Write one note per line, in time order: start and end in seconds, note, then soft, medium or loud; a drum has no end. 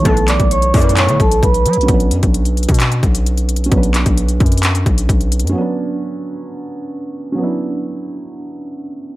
0.00 1.90 E3 medium
0.00 0.02 A3 medium
0.00 1.83 A3 medium
0.00 0.05 B3 medium
0.00 0.08 A4 medium
0.00 0.11 B4 medium
0.05 0.38 B1 loud
0.05 0.15 B1 medium
0.05 0.15 A2 medium
0.05 0.15 E3 loud
0.05 1.85 B3 medium
0.05 0.25 A4 medium
0.05 1.86 A4 medium
0.05 0.25 A5 medium
0.05 kick loud
0.05 closed hi-hat medium
0.11 1.88 B4 medium
0.17 closed hi-hat medium
0.28 0.48 D5 medium
0.28 0.48 D6 medium
0.28 clap loud
0.28 closed hi-hat medium
0.40 0.73 B1 loud
0.40 kick medium
0.40 closed hi-hat medium
0.51 0.71 C#5 medium
0.51 0.71 C#6 medium
0.51 closed hi-hat medium
0.62 closed hi-hat medium
0.74 1.18 B1 loud
0.74 1.10 F#2 loud
0.74 1.18 A2 loud
0.74 1.18 E3 loud
0.74 0.93 D5 medium
0.74 0.94 D6 medium
0.74 kick loud
0.74 closed hi-hat medium
0.74 open hi-hat medium
0.82 closed hi-hat medium
0.89 closed hi-hat medium
0.97 1.16 C#5 medium
0.97 1.17 C#6 medium
0.97 clap loud
0.97 closed hi-hat medium
1.08 1.19 D3 loud
1.08 closed hi-hat medium
1.20 1.42 B1 loud
1.20 1.40 A4 medium
1.20 1.40 A5 medium
1.20 kick loud
1.20 closed hi-hat soft
1.32 closed hi-hat medium
1.42 1.67 B1 loud
1.42 1.86 B4 medium
1.42 1.86 B5 medium
1.42 kick loud
1.42 closed hi-hat medium
1.54 closed hi-hat medium
1.66 1.79 F#3 loud
1.66 closed hi-hat medium
1.73 1.88 B1 loud
1.73 closed hi-hat medium
1.81 3.65 C#4 medium
1.81 closed hi-hat soft
1.86 2.13 B1 loud
1.86 3.67 F#3 medium
1.86 3.68 B3 medium
1.86 kick loud
1.86 closed hi-hat medium
1.91 3.69 D4 medium
1.91 3.71 B4 medium
2.00 closed hi-hat medium
2.11 2.22 F#2 loud
2.11 closed hi-hat medium
2.23 2.67 B1 loud
2.23 kick medium
2.23 closed hi-hat medium
2.34 closed hi-hat medium
2.45 closed hi-hat medium
2.57 closed hi-hat soft
2.63 closed hi-hat medium
2.69 3.02 B2 loud
2.69 kick medium
2.69 closed hi-hat medium
2.74 closed hi-hat medium
2.80 clap loud
2.80 closed hi-hat medium
2.92 closed hi-hat medium
3.03 3.69 B1 loud
3.03 kick medium
3.03 closed hi-hat soft
3.15 closed hi-hat medium
3.26 closed hi-hat medium
3.38 closed hi-hat medium
3.49 closed hi-hat medium
3.56 closed hi-hat medium
3.64 5.48 C#4 medium
3.64 closed hi-hat soft
3.69 4.05 B1 loud
3.69 5.50 F#3 medium
3.69 5.51 B3 medium
3.69 kick loud
3.69 closed hi-hat medium
3.75 5.53 D4 medium
3.75 5.54 B4 medium
3.83 closed hi-hat medium
3.94 clap loud
3.94 closed hi-hat medium
4.06 4.39 B1 loud
4.06 kick medium
4.06 closed hi-hat medium
4.17 closed hi-hat medium
4.28 closed hi-hat soft
4.40 4.84 F#2 loud
4.40 kick medium
4.40 closed hi-hat soft
4.46 closed hi-hat medium
4.52 closed hi-hat medium
4.58 closed hi-hat medium
4.63 clap loud
4.63 closed hi-hat medium
4.75 closed hi-hat medium
4.86 5.08 B1 loud
4.86 kick medium
4.86 closed hi-hat soft
4.98 closed hi-hat medium
5.09 5.45 B1 loud
5.09 kick medium
5.09 closed hi-hat medium
5.21 closed hi-hat medium
5.32 closed hi-hat medium
5.39 5.54 F#2 loud
5.39 closed hi-hat medium
5.47 7.31 C#4 medium
5.47 closed hi-hat soft
5.52 7.33 F#3 medium
5.52 7.34 B3 medium
5.58 7.36 D4 medium
5.58 7.37 B4 medium
7.32 9.16 F#3 medium
7.32 9.15 C#4 medium
7.38 9.16 B3 medium
7.38 9.16 D4 medium
7.44 9.16 E4 medium